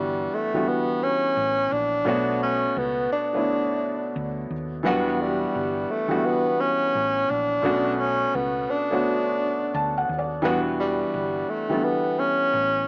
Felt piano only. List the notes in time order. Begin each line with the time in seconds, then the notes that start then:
Already playing: E3 G3 B3 D4 F#4
0.53 D3 E3 G3 B3 F#4
2.05 B2 A3 B3 F#4 C#5
3.33 D3 A3 B3 E4 C#5
4.83 E3 F#3 B3 D4 F#4
4.91 G3
6.08 D3 E3 G3 B3 F#4
7.62 B2 A3 B3 C#4 F#4
8.90 D3 A3 B3 F#4 C#5
9.74 A5
9.98 F#5
10.19 D5
10.42 E3 G3 B3 D4 F#4
11.69 D3 E3 G3 B3 A4